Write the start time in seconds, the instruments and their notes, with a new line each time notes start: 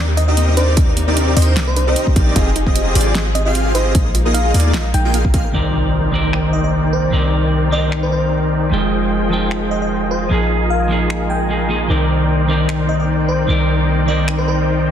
Already playing: 808-style bass D#2, string section C3 A#3 D4 D#4
0.08 synth arpeggio sound G4
0.17 synth arpeggio sound C4, fm electric piano D#5, closed hi-hat
0.28 supersaw synth C4 D#4 G4 A#4 D#5, synth arpeggio sound D4, fm electric piano D#5, digital synth lead D#5
0.37 synth arpeggio sound A#3, closed hi-hat
0.48 synth arpeggio sound A#3
0.57 supersaw synth C4 D#4 G4 A#4 D5, synth arpeggio sound D4, fm electric piano C5, digital synth lead D5, closed hi-hat
0.68 synth arpeggio sound G4
0.77 synth arpeggio sound C4, supersaw synth C4 D#4 G4 A#4 D5, kick, closed hi-hat
0.88 synth arpeggio sound D4
0.97 synth arpeggio sound A#3, closed hi-hat
1.07 synth arpeggio sound A#3, supersaw synth C4 D#4 G4 A#4 D5, digital synth lead D5
1.17 synth arpeggio sound D4, closed hi-hat
1.27 synth arpeggio sound G4
1.36 808-style bass D#2, synth arpeggio sound C4, supersaw synth C4 D#4 G4 A#4 C5, digital synth lead C5, fm electric piano D#5, open hi-hat
1.42 closed hi-hat
1.47 synth arpeggio sound D4
1.56 808-style bass C2, synth arpeggio sound A#3, supersaw synth C4 D#4 G4 A#4 D5, digital synth lead D5, snare, closed hi-hat
1.67 synth arpeggio sound A#3, fm electric piano C5
1.76 synth arpeggio sound D4, fm electric piano C5, closed hi-hat
1.87 supersaw synth C4 D#4 G4 A#4 D#5, synth arpeggio sound G4, digital synth lead D#5
1.96 synth arpeggio sound C4, closed hi-hat
2.07 synth arpeggio sound D4, kick
2.16 808-style bass A#1, synth arpeggio sound A#3, supersaw synth C4 D#4 G4 A#4 D5, digital synth lead D5, kick, closed hi-hat
2.27 synth arpeggio sound A#3
2.36 808-style bass F1, string section F3 G4 G#4, supersaw synth C4 F4 G4 G#4 D#5, synth arpeggio sound F4, digital synth lead D#5, kick, closed hi-hat
2.47 synth arpeggio sound G#4
2.56 synth arpeggio sound D#4, closed hi-hat
2.66 supersaw synth C4 F4 G4 G#4 D#5, synth arpeggio sound F4, digital synth lead D#5, kick
2.76 synth arpeggio sound C4, closed hi-hat
2.86 synth arpeggio sound C4
2.95 808-style bass G#1, supersaw synth C4 F4 G4 G#4 D5, synth arpeggio sound F4, digital synth lead D5, open hi-hat
3.01 closed hi-hat
3.06 synth arpeggio sound G#4
3.15 supersaw synth C4 F4 G4 G#4 D#5, synth arpeggio sound D#4, digital synth lead D#5, snare, closed hi-hat
3.26 synth arpeggio sound F4
3.35 synth arpeggio sound C4, fm electric piano D#5, closed hi-hat
3.45 supersaw synth C4 F4 G4 G#4 F5, synth arpeggio sound C4, fm electric piano D#5, digital synth lead F5
3.55 synth arpeggio sound F4, closed hi-hat
3.66 synth arpeggio sound G#4
3.75 supersaw synth C4 F4 G4 G#4 D#5, synth arpeggio sound D#4, fm electric piano C5, digital synth lead D#5, closed hi-hat
3.86 synth arpeggio sound F4
3.95 808-style bass A#1, string section G#3 A#3 D#4, supersaw synth A#3 D#4 F4 G#4 D#5, synth arpeggio sound A#3, digital synth lead D#5, kick, closed hi-hat
4.06 synth arpeggio sound A#3
4.15 synth arpeggio sound F4, closed hi-hat
4.25 supersaw synth A#3 D#4 F4 G#4 D#5, synth arpeggio sound A#4, digital synth lead D#5
4.34 synth arpeggio sound D#4, fm electric piano F5, closed hi-hat
4.45 synth arpeggio sound F4
4.54 808-style bass D#2, synth arpeggio sound A#3, supersaw synth A#3 D#4 F4 G#4 D5, digital synth lead D5, open hi-hat
4.60 closed hi-hat
4.65 synth arpeggio sound A#3
4.74 808-style bass A#1, supersaw synth A#3 D#4 F4 G#4 D#5, synth arpeggio sound F4, digital synth lead D#5, snare, closed hi-hat
4.85 synth arpeggio sound A#4
4.94 808-style bass A#1, synth arpeggio sound D#4, fm electric piano G5, closed hi-hat
5.05 supersaw synth A#3 D#4 F4 G#4 G5, synth arpeggio sound F4, digital synth lead G5
5.14 synth arpeggio sound A#3, supersaw synth A#3 D#4 F4 G#4 F5, digital synth lead F5, closed hi-hat
5.25 synth arpeggio sound A#3, kick
5.34 supersaw synth A#3 D#4 F4 G#4 F5, synth arpeggio sound F4, digital synth lead F5, kick, closed hi-hat
5.45 synth arpeggio sound A#4
5.52 808-style bass C2, string section C3 D#3 A#3 D5, clean electric guitar D#3 C4 D5, supersaw synth D#4 A#4 C5 D5 G5, impact
5.56 clean electric guitar A#4
6.11 clean electric guitar D#3 C4 A#4 D5
6.33 finger snap
6.53 fm electric piano D#5
6.64 fm electric piano D#5
6.93 fm electric piano C5
7.11 808-style bass C2, clean electric guitar D#3 C4 D5
7.15 clean electric guitar A#4
7.70 clean electric guitar D#3 C4 D5, fm electric piano D#5
7.74 clean electric guitar A#4
7.92 finger snap
8.03 fm electric piano C5
8.12 fm electric piano C5
8.70 808-style bass F1, clean electric guitar F3 G#3 D#4, string section F3 G#3 G5, supersaw synth F4 G#4 C5 D#5 G5
8.74 clean electric guitar G5
9.29 clean electric guitar F3 G#3 D#4 G5
9.51 finger snap
9.71 fm electric piano D#5
9.82 fm electric piano D#5
10.11 fm electric piano C5
10.29 808-style bass A#1, clean electric guitar F3 A#3 D#4 G#4, string section G#3 A#3, supersaw synth F4 G#4 A#4 D#5 G#5
10.70 fm electric piano F5
10.88 clean electric guitar F3 A#3 D#4
10.92 clean electric guitar G#4
11.10 finger snap
11.30 fm electric piano G5
11.49 clean electric guitar F3 A#3 D#4 G#4
11.69 clean electric guitar F3 A#3 D#4 G#4
11.87 808-style bass C2, string section C3 D#3 D5, clean electric guitar D#3 C4 A#4 D5, supersaw synth D#4 A#4 C5 D5 G5
12.47 clean electric guitar D#3 C4 A#4 D5
12.69 finger snap
12.89 fm electric piano D#5
13.00 fm electric piano D#5
13.29 fm electric piano C5
13.46 808-style bass C2, clean electric guitar D#3 C4 D5
13.50 clean electric guitar A#4
14.06 clean electric guitar D#3 C4 A#4 D5, fm electric piano D#5
14.28 finger snap
14.39 fm electric piano C5
14.48 fm electric piano C5